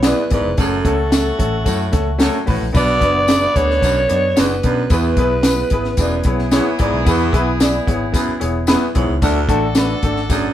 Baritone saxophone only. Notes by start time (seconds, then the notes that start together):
0.05 E2
0.32 G#2
0.59 F#2
1.67 A2
2.21 F#2
2.47 A2
2.75 B2
3.83 F#2
4.37 E2
4.64 F#2
4.91 E2
5.99 F#2
6.53 E2
6.80 G#2
7.08 E2
8.14 F#2
8.68 E2
8.95 G#2
9.22 D2
10.31 F#2